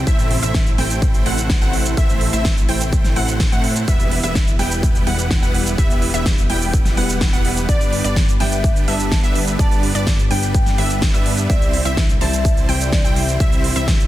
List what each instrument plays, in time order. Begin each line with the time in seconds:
Already playing: analog synth pad C3 E4
0.07 analog synth bass A1, analog synth pad E3 A3, supersaw synth A3 C4 E4 C5 E5, synth pluck E5, kick, closed hi-hat, shaker
0.19 closed hi-hat, shaker
0.31 open hi-hat
0.43 analog synth bass A1, supersaw synth A3 C4 E4 C5 E5, synth pluck E5, closed hi-hat, shaker
0.54 kick, snare, closed hi-hat, shaker
0.66 closed hi-hat, shaker
0.78 analog synth bass A1, supersaw synth A3 C4 E4 C5 G5, synth pluck G5, snare, open hi-hat
0.90 closed hi-hat, shaker
1.02 kick, closed hi-hat, shaker
1.14 closed hi-hat, shaker
1.26 analog synth bass A1, supersaw synth A3 C4 E4 C5 F#5, synth pluck F#5, open hi-hat
1.38 closed hi-hat, shaker
1.50 kick, snare, closed hi-hat, shaker
1.62 analog synth bass A1, supersaw synth A3 C4 E4 C5 F#5, synth pluck F#5, closed hi-hat, shaker
1.73 open hi-hat
1.85 closed hi-hat, shaker
1.97 analog synth bass A1, supersaw synth A3 C4 E4 C5 E5, synth pluck E5, kick, closed hi-hat, shaker
2.09 closed hi-hat, shaker
2.21 open hi-hat
2.33 analog synth bass A1, supersaw synth A3 C4 E4 C5 E5, synth pluck E5, closed hi-hat, shaker
2.45 kick, snare, closed hi-hat, shaker
2.57 closed hi-hat, shaker
2.69 analog synth bass A1, supersaw synth A3 C4 E4 C5 G5, synth pluck G5, open hi-hat
2.80 closed hi-hat, shaker
2.92 kick, closed hi-hat, shaker
3.04 snare, closed hi-hat, shaker
3.16 analog synth bass A1, supersaw synth A3 C4 E4 C5 F#5, synth pluck F#5, open hi-hat
3.28 closed hi-hat, shaker
3.40 kick, snare, closed hi-hat, shaker
3.52 analog synth bass A2, supersaw synth A3 C4 E4 C5 F#5, synth pluck F#5, closed hi-hat, shaker
3.64 open hi-hat
3.76 closed hi-hat, shaker
3.88 analog synth bass E1, analog synth pad E3 G3 B3 G4, supersaw synth G3 B3 E4 B4 E5, synth pluck E5, kick, closed hi-hat, shaker
4.00 closed hi-hat, shaker
4.11 open hi-hat
4.23 analog synth bass E1, supersaw synth G3 B3 E4 B4 E5, synth pluck E5, closed hi-hat, shaker
4.35 kick, snare, closed hi-hat, shaker
4.47 closed hi-hat, shaker
4.59 analog synth bass E1, supersaw synth G3 B3 E4 B4 G5, synth pluck G5, snare, open hi-hat
4.71 closed hi-hat, shaker
4.83 kick, closed hi-hat, shaker
4.95 closed hi-hat, shaker
5.07 analog synth bass E1, supersaw synth G3 B3 E4 B4 F#5, synth pluck F#5, open hi-hat
5.19 closed hi-hat, shaker
5.31 kick, snare, closed hi-hat, shaker
5.42 analog synth bass E1, supersaw synth G3 B3 E4 B4 F#5, synth pluck F#5, closed hi-hat, shaker
5.54 open hi-hat
5.66 closed hi-hat, shaker
5.78 analog synth bass E1, supersaw synth G3 B3 E4 B4 E5, synth pluck E5, kick, closed hi-hat, shaker
5.90 closed hi-hat, shaker
6.02 open hi-hat
6.14 analog synth bass E1, supersaw synth G3 B3 E4 B4 E5, synth pluck E5, closed hi-hat, shaker
6.26 kick, snare, closed hi-hat, shaker
6.38 closed hi-hat, shaker
6.50 analog synth bass E1, supersaw synth G3 B3 E4 B4 G5, synth pluck G5, open hi-hat
6.62 open hi-hat, shaker
6.73 kick, closed hi-hat, shaker
6.85 snare, closed hi-hat, shaker
6.97 analog synth bass E1, supersaw synth G3 B3 E4 B4 F#5, synth pluck F#5, open hi-hat
7.09 closed hi-hat, shaker
7.21 kick, snare, closed hi-hat, shaker
7.33 analog synth bass E1, supersaw synth G3 B3 E4 B4 F#5, synth pluck F#5, closed hi-hat, shaker
7.45 open hi-hat
7.57 closed hi-hat, shaker
7.69 analog synth bass G1, analog synth pad D3, supersaw synth G3 B3 D4 B4 D5, vibraphone D5, synth pluck D5, kick, closed hi-hat, shaker
7.81 vibraphone D5, closed hi-hat, shaker
7.93 open hi-hat
8.04 analog synth bass G1, supersaw synth G3 B3 D4 B4 D5, synth pluck D5, closed hi-hat, shaker
8.16 kick, snare, closed hi-hat, shaker
8.28 closed hi-hat, shaker
8.40 analog synth bass G1, supersaw synth G3 B3 D4 B4 G5, vibraphone E5, synth pluck G5, snare, open hi-hat
8.52 vibraphone E5, closed hi-hat, shaker
8.64 kick, closed hi-hat, shaker
8.76 closed hi-hat, shaker
8.88 analog synth bass G1, supersaw synth G3 B3 D4 B4 E5, synth pluck E5, vibraphone A5, open hi-hat
9.00 vibraphone A5, closed hi-hat, shaker
9.12 kick, snare, closed hi-hat, shaker
9.24 analog synth bass G1, supersaw synth G3 B3 D4 B4 E5, synth pluck E5, closed hi-hat, shaker
9.35 open hi-hat
9.47 closed hi-hat, shaker
9.59 analog synth bass G1, supersaw synth G3 B3 D4 B4 D5, synth pluck D5, vibraphone A5, kick, closed hi-hat, shaker
9.71 closed hi-hat, shaker
9.83 open hi-hat
9.95 analog synth bass G1, supersaw synth G3 B3 D4 B4 D5, synth pluck D5, closed hi-hat, shaker
10.07 kick, snare, closed hi-hat, shaker
10.19 closed hi-hat, shaker
10.31 analog synth bass G1, supersaw synth G3 B3 D4 B4 G5, vibraphone G5, synth pluck G5, open hi-hat
10.43 closed hi-hat, shaker
10.54 kick, closed hi-hat, shaker
10.66 snare, closed hi-hat, shaker
10.78 analog synth bass G1, supersaw synth G3 B3 D4 B4 E5, synth pluck E5, open hi-hat
10.90 closed hi-hat, shaker
11.02 kick, snare, closed hi-hat, shaker
11.14 analog synth bass G2, supersaw synth G3 B3 D4 B4 E5, synth pluck E5, closed hi-hat, shaker
11.26 open hi-hat
11.38 closed hi-hat, shaker
11.50 analog synth bass C2, analog synth pad C3 E3 E4, supersaw synth G3 C4 E4 C5 E5, vibraphone D5, synth pluck E5, kick, closed hi-hat, shaker
11.61 vibraphone D5, closed hi-hat, shaker
11.73 open hi-hat
11.85 analog synth bass C2, supersaw synth G3 C4 E4 C5 E5, synth pluck E5, closed hi-hat, shaker
11.97 kick, snare, closed hi-hat, shaker
12.09 closed hi-hat, shaker
12.21 analog synth bass C2, supersaw synth G3 C4 E4 C5 A5, vibraphone E5, synth pluck A5, snare, open hi-hat
12.33 vibraphone E5, closed hi-hat, shaker
12.45 kick, closed hi-hat, shaker
12.57 closed hi-hat, shaker
12.69 analog synth bass C2, supersaw synth G3 C4 E4 C5 G5, synth pluck G5, open hi-hat
12.81 vibraphone D5, closed hi-hat, shaker
12.93 kick, snare, closed hi-hat, shaker
13.04 analog synth bass C2, supersaw synth G3 C4 E4 C5 G5, synth pluck G5, closed hi-hat, shaker
13.16 vibraphone E5, open hi-hat
13.28 closed hi-hat, shaker
13.40 analog synth bass C2, supersaw synth G3 C4 E4 C5 E5, analog synth pad D4, synth pluck E5, kick, closed hi-hat, shaker
13.52 closed hi-hat, shaker
13.64 open hi-hat
13.76 analog synth bass C2, supersaw synth G3 C4 E4 C5 E5, synth pluck E5, closed hi-hat, shaker
13.88 kick, snare, closed hi-hat, shaker
14.00 closed hi-hat, shaker